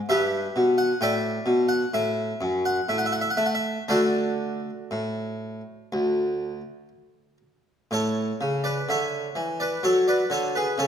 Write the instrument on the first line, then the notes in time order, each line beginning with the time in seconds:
harpsichord
0.09 G2 G4 B4 E5
0.56 B2
0.78 F#5
1.01 A2 D5 E5 G5
1.46 B2
1.69 F#5
1.94 A2 E5
2.41 F#2
2.65 F#5
2.89 A2 E5
2.98 F#5
3.06 E5
3.12 F#5
3.21 E5
3.30 F#5
3.37 A3 E5
3.46 F#5
3.55 E5
3.88 D3 A3 D4 F#4 A4 D5
4.91 A2
5.92 D2
7.91 A2 A4 C#5
8.41 C#3
8.64 B4 D5
8.89 D3 C#5 E5
9.35 E3
9.60 B4 D5
9.83 F#3 A4 C#5
10.08 B4 D5
10.30 D3 A4 C#5
10.55 G#4 B4
10.78 C#3 A4 C#5